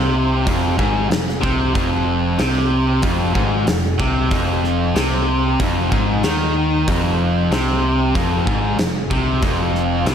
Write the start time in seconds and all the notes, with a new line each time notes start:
Already playing: C2 C3
0.45 F1 F2, kick, open hi-hat
0.78 G#1 G#2, kick
1.09 F1 F2, snare, open hi-hat
1.29 snare
1.41 C2 C3, kick
1.73 F1 F2, kick, open hi-hat
2.38 C2 C3, snare, open hi-hat
3.02 F1 F2, kick, open hi-hat
3.35 G#1 G#2, kick
3.67 F1 F2, snare, open hi-hat
3.99 C2 C3, kick
4.31 F1 F2, kick, open hi-hat
4.64 snare
4.94 C2 C3, snare, open hi-hat
5.59 F1 F2, kick, open hi-hat
5.92 G#1 G#2, kick
6.23 D#2 D#3, snare, open hi-hat
6.88 F1 F2, kick, open hi-hat
7.51 C2 C3, snare, open hi-hat
8.14 F1 F2, kick, open hi-hat
8.47 G#1 G#2, kick
8.77 F1 F2, snare, open hi-hat
9.11 C2 C3, kick
9.42 F1 F2, kick, open hi-hat
9.75 snare
10.06 C2 C3, snare, open hi-hat